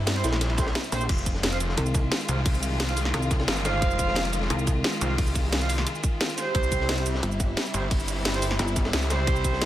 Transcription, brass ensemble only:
0.15 0.26 C4 medium
0.15 0.26 G4 medium
0.15 0.26 C5 loud
0.58 0.65 C4 medium
0.58 0.65 G4 medium
0.58 0.65 C5 medium
0.92 1.03 C4 medium
0.92 1.03 G4 medium
0.92 1.03 C5 loud
1.52 1.59 F4 medium
1.52 1.59 C5 medium
1.52 1.59 F5 medium
2.29 2.39 F4 medium
2.29 2.39 C5 medium
2.29 2.39 F5 medium
2.88 2.99 F4 medium
2.88 2.99 C5 medium
2.88 2.99 F5 medium
3.65 4.23 F4 loud
3.65 4.23 C5 medium
3.65 4.23 F5 loud
4.25 4.31 F4 medium
4.25 4.31 C5 medium
4.25 4.31 F5 loud
5.01 5.12 F4 medium
5.01 5.12 C5 medium
5.01 5.12 F5 medium
5.61 5.72 F4 medium
5.61 5.72 C5 medium
5.61 5.72 F5 medium
6.38 6.95 C4 loud
6.38 6.95 G4 medium
6.38 6.95 C5 loud
6.97 7.04 C4 medium
6.97 7.04 G4 medium
6.97 7.04 C5 medium
7.74 7.85 C4 medium
7.74 7.85 G4 medium
7.74 7.85 C5 medium
8.34 8.44 C4 medium
8.34 8.44 G4 medium
8.34 8.45 C5 loud
9.10 9.65 C4 loud
9.10 9.65 G4 loud
9.10 9.65 C5 loud

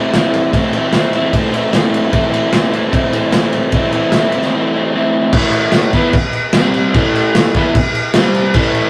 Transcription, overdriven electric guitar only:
0.00 0.53 A2 medium
0.00 0.15 E3 medium
0.00 0.16 A3 medium
0.00 0.17 C4 medium
0.00 0.18 E4 medium
0.16 0.55 E3 medium
0.16 0.55 A3 medium
0.16 0.56 C4 medium
0.16 0.57 E4 medium
0.54 1.34 A2 medium
0.54 0.94 E3 medium
0.54 0.78 A3 medium
0.54 0.77 C4 medium
0.54 0.75 E4 medium
0.75 0.95 A3 medium
0.75 0.96 C4 medium
0.75 0.97 E4 medium
0.95 1.34 E3 medium
0.95 1.18 A3 medium
0.95 1.16 C4 medium
0.95 1.15 E4 medium
1.15 1.35 A3 medium
1.15 1.36 C4 medium
1.15 1.36 E4 medium
1.34 2.10 A2 medium
1.34 1.72 E3 medium
1.34 1.56 A3 medium
1.34 1.54 C4 medium
1.34 1.53 E4 medium
1.53 1.73 A3 medium
1.53 1.74 C4 medium
1.53 1.75 E4 medium
1.72 2.11 E3 medium
1.72 2.12 A3 medium
1.72 2.13 C4 medium
1.72 2.13 E4 medium
2.11 2.91 A2 medium
2.11 2.51 E3 medium
2.11 2.34 A3 loud
2.11 2.32 C4 medium
2.11 2.31 E4 loud
2.31 2.51 A3 medium
2.31 2.52 C4 medium
2.31 2.54 E4 medium
2.51 2.92 E3 medium
2.51 2.75 A3 medium
2.51 2.73 C4 medium
2.51 2.71 E4 medium
2.72 2.92 A3 medium
2.72 2.92 C4 medium
2.72 2.94 E4 medium
2.91 3.72 A2 medium
2.91 3.32 E3 medium
2.91 3.15 A3 medium
2.91 3.14 C4 medium
2.91 3.12 E4 medium
3.13 3.33 A3 medium
3.13 3.34 C4 medium
3.13 3.34 E4 medium
3.32 3.72 E3 medium
3.32 3.74 A3 medium
3.32 3.74 C4 medium
3.32 3.75 E4 medium
3.73 4.13 A2 medium
3.73 4.13 E3 medium
3.73 3.94 A3 medium
3.73 3.93 C4 medium
3.73 3.92 E4 medium
3.93 4.13 A3 medium
3.93 4.15 C4 medium
3.93 4.15 E4 medium
4.14 4.54 E3 medium
4.14 4.36 A3 medium
4.14 4.35 C4 medium
4.14 4.33 E4 medium
4.34 4.55 A3 medium
4.34 4.56 C4 medium
4.34 4.56 E4 medium
4.54 4.94 A2 medium
4.54 4.92 E3 medium
4.54 4.76 A3 medium
4.54 4.75 C4 medium
4.54 4.73 E4 medium
4.75 4.94 A3 medium
4.75 4.94 C4 medium
4.75 4.96 E4 medium
4.93 5.32 E3 medium
4.93 5.33 A3 medium
4.93 5.34 C4 medium
4.93 5.34 E4 medium
5.34 5.94 A2 medium
5.34 5.93 E3 medium
5.34 5.94 A3 loud
5.94 6.14 E3 medium
5.94 6.13 B3 medium
5.94 6.14 E4 loud
6.54 6.94 C3 medium
6.54 6.94 G3 loud
6.54 6.94 C4 loud
6.95 7.54 A2 medium
6.95 7.54 E3 medium
6.95 7.55 A3 loud
7.56 7.74 E3 medium
7.56 7.75 B3 loud
7.56 7.75 E4 loud
8.15 8.54 C3 loud
8.15 8.54 G3 loud
8.15 8.55 C4 loud
8.55 8.90 A2 medium
8.55 8.90 E3 loud
8.55 8.90 A3 loud

